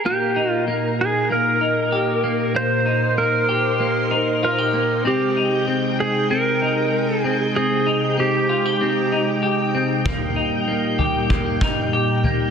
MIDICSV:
0, 0, Header, 1, 5, 480
1, 0, Start_track
1, 0, Key_signature, -3, "major"
1, 0, Tempo, 625000
1, 41, Time_signature, 4, 2, 24, 8
1, 9603, End_track
2, 0, Start_track
2, 0, Title_t, "Electric slide guitar"
2, 0, Program_c, 0, 29
2, 45, Note_on_c, 0, 67, 77
2, 383, Note_off_c, 0, 67, 0
2, 383, Note_on_c, 0, 65, 77
2, 492, Note_off_c, 0, 65, 0
2, 776, Note_on_c, 0, 68, 67
2, 1013, Note_off_c, 0, 68, 0
2, 1016, Note_on_c, 0, 70, 70
2, 1965, Note_off_c, 0, 70, 0
2, 1968, Note_on_c, 0, 72, 92
2, 2439, Note_off_c, 0, 72, 0
2, 2442, Note_on_c, 0, 70, 76
2, 3404, Note_off_c, 0, 70, 0
2, 3414, Note_on_c, 0, 70, 71
2, 3857, Note_off_c, 0, 70, 0
2, 3895, Note_on_c, 0, 67, 61
2, 4337, Note_off_c, 0, 67, 0
2, 4611, Note_on_c, 0, 68, 81
2, 4845, Note_on_c, 0, 70, 86
2, 4853, Note_off_c, 0, 68, 0
2, 5521, Note_off_c, 0, 70, 0
2, 5521, Note_on_c, 0, 68, 86
2, 5809, Note_off_c, 0, 68, 0
2, 5809, Note_on_c, 0, 68, 84
2, 6293, Note_off_c, 0, 68, 0
2, 6296, Note_on_c, 0, 67, 64
2, 7218, Note_off_c, 0, 67, 0
2, 9603, End_track
3, 0, Start_track
3, 0, Title_t, "Clean electric guitar"
3, 0, Program_c, 1, 27
3, 39, Note_on_c, 1, 58, 68
3, 278, Note_on_c, 1, 63, 49
3, 510, Note_off_c, 1, 58, 0
3, 520, Note_on_c, 1, 58, 48
3, 992, Note_off_c, 1, 58, 0
3, 1001, Note_on_c, 1, 58, 50
3, 1234, Note_off_c, 1, 63, 0
3, 1237, Note_on_c, 1, 63, 47
3, 1477, Note_on_c, 1, 67, 48
3, 1709, Note_off_c, 1, 58, 0
3, 1718, Note_on_c, 1, 58, 47
3, 1946, Note_off_c, 1, 58, 0
3, 1956, Note_on_c, 1, 58, 68
3, 2192, Note_off_c, 1, 63, 0
3, 2195, Note_on_c, 1, 63, 46
3, 2430, Note_off_c, 1, 58, 0
3, 2439, Note_on_c, 1, 58, 43
3, 2675, Note_off_c, 1, 67, 0
3, 2678, Note_on_c, 1, 67, 52
3, 2908, Note_off_c, 1, 58, 0
3, 2917, Note_on_c, 1, 58, 50
3, 3154, Note_off_c, 1, 63, 0
3, 3157, Note_on_c, 1, 63, 51
3, 3399, Note_off_c, 1, 67, 0
3, 3402, Note_on_c, 1, 65, 54
3, 3521, Note_off_c, 1, 65, 0
3, 3521, Note_on_c, 1, 67, 44
3, 3627, Note_off_c, 1, 58, 0
3, 3636, Note_on_c, 1, 58, 46
3, 3876, Note_off_c, 1, 58, 0
3, 3879, Note_on_c, 1, 60, 69
3, 3929, Note_off_c, 1, 67, 0
3, 4120, Note_off_c, 1, 63, 0
3, 4123, Note_on_c, 1, 63, 45
3, 4349, Note_off_c, 1, 60, 0
3, 4358, Note_on_c, 1, 60, 46
3, 4832, Note_off_c, 1, 60, 0
3, 4841, Note_on_c, 1, 60, 52
3, 5080, Note_off_c, 1, 63, 0
3, 5084, Note_on_c, 1, 63, 49
3, 5554, Note_off_c, 1, 60, 0
3, 5563, Note_on_c, 1, 60, 50
3, 5797, Note_off_c, 1, 60, 0
3, 5806, Note_on_c, 1, 60, 63
3, 6038, Note_off_c, 1, 63, 0
3, 6041, Note_on_c, 1, 63, 49
3, 6271, Note_off_c, 1, 60, 0
3, 6280, Note_on_c, 1, 60, 48
3, 6522, Note_on_c, 1, 65, 49
3, 6648, Note_off_c, 1, 65, 0
3, 6648, Note_on_c, 1, 67, 47
3, 6757, Note_off_c, 1, 60, 0
3, 6767, Note_on_c, 1, 60, 50
3, 7003, Note_off_c, 1, 63, 0
3, 7006, Note_on_c, 1, 63, 43
3, 7231, Note_off_c, 1, 67, 0
3, 7240, Note_on_c, 1, 67, 52
3, 7475, Note_off_c, 1, 60, 0
3, 7484, Note_on_c, 1, 60, 46
3, 7721, Note_off_c, 1, 60, 0
3, 7724, Note_on_c, 1, 58, 69
3, 7955, Note_off_c, 1, 63, 0
3, 7958, Note_on_c, 1, 63, 47
3, 8191, Note_off_c, 1, 58, 0
3, 8200, Note_on_c, 1, 58, 47
3, 8436, Note_off_c, 1, 67, 0
3, 8439, Note_on_c, 1, 67, 53
3, 8673, Note_off_c, 1, 58, 0
3, 8682, Note_on_c, 1, 58, 54
3, 8922, Note_off_c, 1, 63, 0
3, 8925, Note_on_c, 1, 63, 43
3, 9161, Note_off_c, 1, 67, 0
3, 9164, Note_on_c, 1, 67, 51
3, 9393, Note_off_c, 1, 58, 0
3, 9402, Note_on_c, 1, 58, 46
3, 9603, Note_off_c, 1, 58, 0
3, 9603, Note_off_c, 1, 63, 0
3, 9603, Note_off_c, 1, 67, 0
3, 9603, End_track
4, 0, Start_track
4, 0, Title_t, "String machine"
4, 0, Program_c, 2, 50
4, 37, Note_on_c, 2, 63, 61
4, 38, Note_on_c, 2, 46, 70
4, 38, Note_on_c, 2, 70, 79
4, 40, Note_on_c, 2, 58, 61
4, 1940, Note_off_c, 2, 70, 0
4, 1961, Note_on_c, 2, 72, 77
4, 3849, Note_off_c, 2, 46, 0
4, 3850, Note_off_c, 2, 58, 0
4, 3862, Note_off_c, 2, 72, 0
4, 3886, Note_on_c, 2, 48, 64
4, 3886, Note_on_c, 2, 79, 73
4, 3887, Note_on_c, 2, 56, 60
4, 7693, Note_off_c, 2, 48, 0
4, 7693, Note_off_c, 2, 56, 0
4, 7723, Note_on_c, 2, 55, 61
4, 7732, Note_on_c, 2, 46, 73
4, 9603, Note_off_c, 2, 46, 0
4, 9603, Note_off_c, 2, 55, 0
4, 9603, Note_off_c, 2, 63, 0
4, 9603, Note_off_c, 2, 79, 0
4, 9603, End_track
5, 0, Start_track
5, 0, Title_t, "Drums"
5, 7721, Note_on_c, 9, 43, 84
5, 7723, Note_on_c, 9, 36, 92
5, 7797, Note_off_c, 9, 43, 0
5, 7800, Note_off_c, 9, 36, 0
5, 8438, Note_on_c, 9, 43, 49
5, 8515, Note_off_c, 9, 43, 0
5, 8680, Note_on_c, 9, 36, 72
5, 8683, Note_on_c, 9, 43, 49
5, 8756, Note_off_c, 9, 36, 0
5, 8760, Note_off_c, 9, 43, 0
5, 8918, Note_on_c, 9, 36, 80
5, 8995, Note_off_c, 9, 36, 0
5, 9397, Note_on_c, 9, 43, 47
5, 9474, Note_off_c, 9, 43, 0
5, 9603, End_track
0, 0, End_of_file